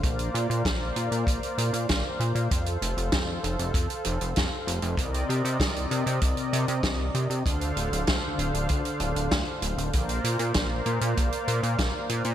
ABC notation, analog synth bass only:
X:1
M:4/4
L:1/16
Q:1/4=97
K:Bb
V:1 name="Analog synth bass" clef=bass
B,,,2 B,, B,, B,,,2 B,, B,, B,,, z B,, B,, B,,, z B,, B,, | F,,2 F,,, F,,, F,,2 F,,, F,,, F,, z F,,, F,,, F,, z F,,, F,,, | C,,2 C, C, C,,2 C, C, C,, z C, C, C,,2 C, C, | D,,2 D,,, D,,, D,,2 D,,, D,,, D,, z D,,, D,,, D,, z D,,, D,,, |
B,,,2 B,, B,, B,,,2 B,, B,, B,,, z B,, B,, B,,, z B,, B,, |]